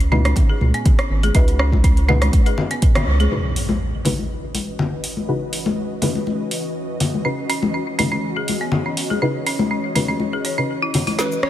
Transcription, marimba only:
0.12 C#4
0.25 C#4
0.49 G#4
0.74 B3
0.99 C#4
1.23 G#4
1.35 C#4
1.59 C#4
1.84 C#4
2.09 C#4
2.22 C#4
2.46 G#4
2.71 B3
2.96 C#4
3.20 G#4
7.25 C#4
7.49 C#4
7.74 C#4
7.99 C#4
8.12 C#4
8.37 G#4
8.61 B3
8.86 C#4
9.10 G#4
9.22 C#4
9.46 C#4
9.71 C#4
9.96 C#4
10.09 C#4
10.33 G#4
10.45 C#5
10.58 C#4
10.82 E4
11.07 E4
11.19 C#4
11.43 C#4

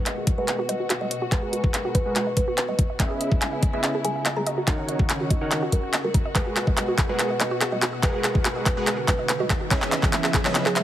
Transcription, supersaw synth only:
Already playing: G#3 G#4 A#4 B4 F#5
0.38 G#3 G#4 A#4 B4 F#5
1.32 G#3 G#4 A#4 B4 F#5
2.06 G#3 G#4 A#4 B4 F#5
3.00 C#4 G#4 B4 D#5 E5
3.73 C#4 G#4 B4 D#5 E5
4.67 D#3 D#4 A#4 C#5 F#5
5.41 D#3 D#4 A#4 C#5 F#5
6.35 G#3 G#4 A#4 B4 F#5
7.09 G#3 G#4 A#4 B4 F#5
8.03 G#3 G#4 A#4 B4 F#5
8.77 G#3 G#4 A#4 B4 F#5
9.71 C#4 G#4 B4 D#5 E5
10.45 C#4 G#4 B4 D#5 E5

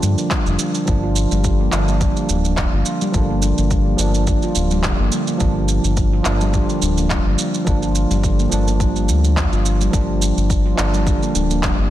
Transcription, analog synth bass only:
0.03 G2
0.47 F1
0.88 G1
1.31 G1
1.72 G1
2.29 D1
2.73 G1
3.14 G1
3.58 G1
3.99 G1
4.55 D1
4.99 G1
5.40 G1
5.84 G1
6.25 G1
6.82 D1
7.26 G1
7.67 G1
8.10 G1
8.52 G1
9.08 D2
9.52 G1
9.93 G1
10.37 G1
10.78 G1
11.35 D1
11.78 G1

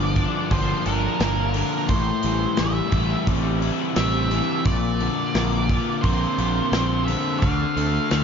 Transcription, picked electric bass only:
Already playing: G1
0.51 G1
0.86 G1
1.20 G1
1.89 A1
2.24 A1
2.59 A1
2.93 A1
3.27 A1
3.97 A1
4.66 A#1
5.35 A#1
6.04 A#1
6.38 A#1
6.72 A#1
7.43 D2
7.77 D2
8.12 D2

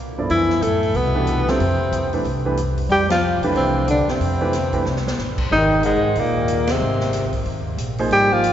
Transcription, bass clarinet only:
0.30 E3
0.63 A2
0.96 B2
1.48 C3
2.89 G3
3.09 F3
3.55 C3
3.88 D3
4.08 C3
5.51 D#3
5.84 G#2
6.18 A#2
6.70 C3
8.12 G3
8.32 F3

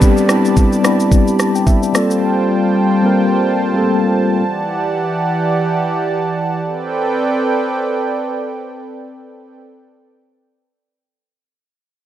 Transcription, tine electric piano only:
Already playing: C4 D4 B4
0.00 G3 B3 C4 D4 G4
0.28 G3 B3 C4 D4 E4
0.83 G3 B3 C4 D4 E4
1.39 A5
1.55 G5
1.67 E5
1.83 D5
1.93 G3 A#3 C4 F4 A4
3.02 G3 A#3 C4 F4 A#4
3.74 G3 A3 C4 F4 A4
3.81 A#3

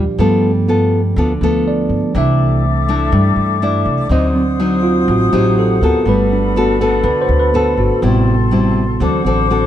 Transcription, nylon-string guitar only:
Already playing: A#2
0.19 G3 B3 F4 A4
0.68 B3 F4 A4
1.18 D3 B3 F4 A4
1.43 B3 F4 A4
2.15 C3 A3 D4 E4
2.89 A3 D4 E4
3.13 G3
3.62 A3 D4 E4
4.10 D3 F#3 C4 D#4
4.60 F#3 C4 D#4
5.09 A2
5.33 F#3 C4 D#4
5.83 B3 F#4 A4
6.07 G3
6.56 B3 F#4 A4
6.81 B3 F#4 A4
7.05 D3
7.54 B3 F#4 A4
8.02 A2 G3 C4 E4
8.51 G3 C4 E4
9.01 D3 C4 F#4 A4
9.26 C4 F#4 A4
9.50 C4 F#4 A4

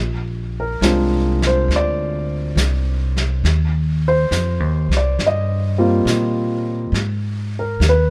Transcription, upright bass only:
Already playing: A#1
0.81 C2
1.68 D2
2.55 C2
3.44 D#2
4.31 F2
4.60 D#2
4.89 C2
5.19 G2
6.05 A#2
6.92 G#2
7.80 D#2

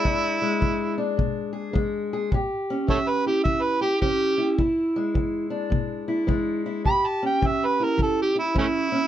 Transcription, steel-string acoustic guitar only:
Already playing: G#3
0.04 E2 D4
0.42 G#3
0.60 E3
0.98 D4
1.17 B2
1.53 G#4
1.73 E3 G#3
2.13 G#4
2.32 A2 G4
2.70 C#4
2.88 E3
3.26 E4
3.45 E3
3.81 G4
4.02 E3 C#4
4.38 E4
4.58 E2 E4
4.96 G#3
5.14 E3
5.50 D4
5.70 B2
6.08 E4
6.27 E3 G#3
6.66 E4
6.84 A2 G4
7.23 C#4
7.42 E3
7.80 E4
7.97 E3
8.35 E4
8.55 E3 C#4
8.92 C#4

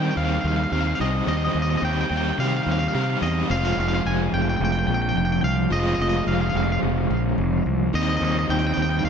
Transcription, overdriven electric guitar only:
Already playing: D#3 G3 C4 G4
0.16 D#3 G3 C4 G4
0.71 D#3 G3 C4 G4
0.99 D#3 G3 C4 G4
1.27 D#3 G3 C4 G4
1.83 D#3 G3 C4 G4
2.11 D#3 G3 C4 G4
2.38 D#3 G3 C4 G4
2.94 D#3 G3 C4 G4
3.22 D#3 G3 C4 G4
3.49 F3 G#3 C4 F4
5.70 F3 G#3 C4 F4
7.93 D#3 G3 C4 G4

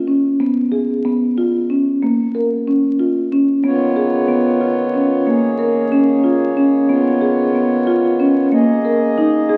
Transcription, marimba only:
0.08 C#4
0.40 B3
0.72 G#4
1.05 B3
1.38 F4
1.70 C#4
2.02 A#3
2.35 A#4
2.68 C#4
2.99 F4
3.32 C#4
3.64 B3
3.96 G#4
4.28 B3
4.61 F4
4.94 C#4
5.27 A#3
5.59 A#4
5.92 C#4
6.24 F4
6.57 C#4
6.89 B3
7.21 G#4
7.55 B3
7.87 F4
8.20 C#4
8.52 A#3
8.85 A#4
9.18 D#4
9.49 G#4

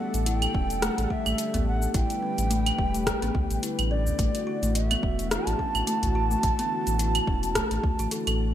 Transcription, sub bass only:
0.14 A1
0.54 E1
0.98 A1
1.26 A1
1.54 A1
1.95 A1
2.38 A1
2.78 E1
3.22 A1
3.51 A1
3.79 A1
4.19 A1
4.63 A1
5.03 E1
5.47 A1
5.75 A1
6.03 A1
6.43 A1
6.87 A1
7.27 E1
7.71 A1
7.99 A1
8.27 A1

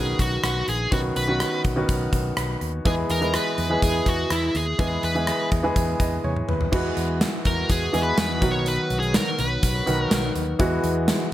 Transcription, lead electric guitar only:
Already playing: G#4
0.20 F#4
0.44 F#4
0.68 G#4
0.93 F#4
1.17 B4
2.87 G#4
3.11 A#4
3.35 B4
3.84 G#4
4.08 F#4
4.32 E4
4.56 G#4
4.80 G#4
5.04 B4
7.47 A#4
7.71 G#4
8.03 B4
8.19 B4
8.51 C#5
8.67 B4
9.00 G#4
9.16 A#4
9.40 B4
10.02 A#4

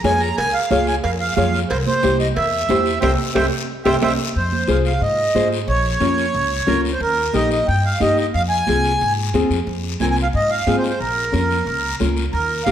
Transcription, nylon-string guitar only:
0.04 F4 G#4 C#5
0.70 F4 G#4 C#5
1.37 F4 G#4 C#5
2.03 E4 G4 C5
2.69 E4 G4 C5
3.02 G4 A#4 C5
3.35 G4 A#4 C5
3.85 G4 A#4 C5
4.02 G4 A#4 C5
4.68 F4 G#4 C5
5.35 F4 G#4 C5
6.00 C#4 F4 A#4
6.67 C#4 F4 A#4
7.34 D#4 G4 A#4
8.00 D#4 G4 A#4
8.68 C4 F4 G#4
9.34 C4 F4 G#4
10.01 C4 F4 A#4
10.67 C4 F4 G#4
11.32 C#4 F4 A#4
12.00 C#4 F4 A#4
12.66 D#4 G4 A#4

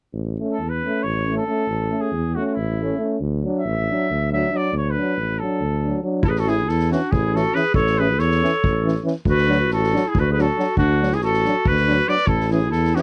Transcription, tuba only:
0.13 A1
0.59 E2
1.04 A1
1.67 A1
2.11 E2
2.57 A1
3.20 D2
3.65 A1
4.10 D2
4.72 D2
5.16 A1
5.60 D2
6.23 A1
6.68 E2
7.11 A1
7.74 A1
8.18 E2
8.63 A1
9.25 D2
9.71 A1
10.15 D2
10.77 D2
11.22 A1
11.67 D2
12.27 A1
12.71 E2

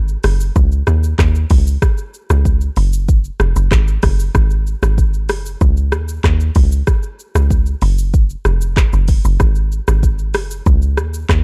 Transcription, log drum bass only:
Already playing: G#1
0.24 F#1
0.56 C#2
0.87 D#2
1.19 D#2
1.51 C#2
2.30 C#2
2.77 F#1
3.40 F1
3.56 F#1
3.71 G#1
4.03 F#1
4.35 G#1
4.83 G#1
5.30 F#1
5.61 C#2
5.93 D#2
6.24 D#2
6.56 C#2
7.35 C#2
7.82 F#1
8.45 F1
8.93 F#1
9.25 F#1
9.40 G#1
9.88 G#1
10.35 F#1
10.66 C#2
10.98 D#2
11.29 D#2

